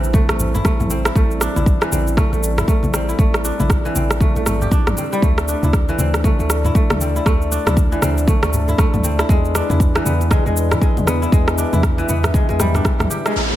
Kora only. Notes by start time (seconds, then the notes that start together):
Already playing: E3 A3 C4 D4 E4
0.14 A3
0.29 A3
0.54 E4
0.65 A3
0.90 C4
1.06 E4
1.16 A3
1.41 D4
1.56 E4
1.82 E3
1.92 C4
2.18 A3
2.33 A3
2.58 E4
2.68 A3
2.94 C4
3.09 E4
3.19 A3
3.45 D4
3.60 E4
3.85 E3
3.96 C4
4.21 A3
4.36 A3
4.46 A3
4.62 G4
4.72 D4
4.98 C4
5.13 G3
5.23 A3
5.49 D4
5.64 E4
5.89 E3
5.99 C4
6.25 A3
6.40 A3
6.65 E4
6.75 A3
7.01 C4
7.16 E4
7.26 A3
7.52 D4
7.67 E4
7.92 E3
8.02 C4
8.28 A3
8.43 A3
8.69 E4
8.79 A3
9.04 C4
9.19 E4
9.30 G#3
9.55 D4
9.70 E4
9.95 E3
10.05 B3
10.30 G#3
10.46 G#3
10.71 E4
10.81 G#3
11.07 B3
11.22 E4
11.32 G#3
11.58 D4
11.73 E4
11.98 E3
12.09 B3
12.34 G#3
12.49 G#3
12.60 G3
12.75 D4
12.85 E4
13.10 G4
13.26 G#3